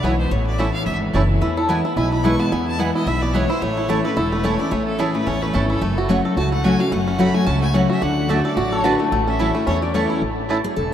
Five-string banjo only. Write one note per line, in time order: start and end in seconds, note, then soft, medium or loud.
0.04 0.11 B3 medium
0.04 0.11 E4 medium
0.59 0.66 A3 medium
0.59 0.66 C#4 medium
0.59 0.66 E4 medium
1.15 1.21 A3 medium
1.15 1.21 C#4 medium
1.15 1.22 E4 medium
1.42 1.57 E4 medium
1.57 1.85 E4 medium
1.70 2.09 B3 medium
1.85 1.97 E4 medium
1.97 2.12 E4 medium
2.12 2.25 E4 medium
2.25 2.95 E4 medium
2.40 2.51 B3 medium
2.52 2.79 B3 medium
2.80 3.19 B3 medium
2.95 3.07 E4 medium
3.07 3.35 E4 medium
3.23 3.60 B3 medium
3.35 3.50 E4 medium
3.50 3.77 E4 medium
3.62 3.89 A3 medium
3.77 4.15 E4 medium
3.90 4.32 A3 medium
4.05 5.45 A4 medium
4.17 4.57 E4 medium
4.32 4.72 A3 medium
4.45 5.27 C#4 medium
4.60 4.97 E4 medium
4.72 5.15 A3 medium
5.00 5.39 E4 medium
5.15 5.42 A3 medium
5.27 5.54 C#4 medium
5.43 5.82 A3 medium
5.55 6.64 C#4 medium
5.70 5.82 E4 medium
5.82 6.10 A3 medium
5.98 6.37 F#4 medium
6.10 6.52 A3 medium
6.25 7.65 A4 medium
6.37 6.79 F#4 medium
6.52 6.91 A3 medium
6.64 7.04 C#4 medium
6.80 7.17 F#4 medium
6.92 7.34 A3 medium
7.08 7.45 C#4 medium
7.20 7.59 F#4 medium
7.34 7.62 A3 medium
7.47 7.73 C#4 medium
7.62 8.29 A3 medium
7.74 8.01 C#4 medium
7.90 8.02 F#4 medium
8.02 8.42 D4 medium
8.29 9.00 A3 medium
8.45 8.72 A4 medium
8.57 8.83 F#4 medium
8.72 10.12 A4 medium
8.84 9.12 F#4 medium
9.00 9.12 A3 medium
9.12 9.52 A3 medium
9.27 9.65 C#4 medium
9.39 9.79 E4 medium
9.55 9.81 A3 medium
9.67 9.93 C#4 medium
9.82 10.20 A3 medium
9.95 10.22 C#4 medium
10.10 10.22 E4 medium
10.50 10.57 A3 medium
10.50 10.57 C#4 medium
10.50 10.57 E4 medium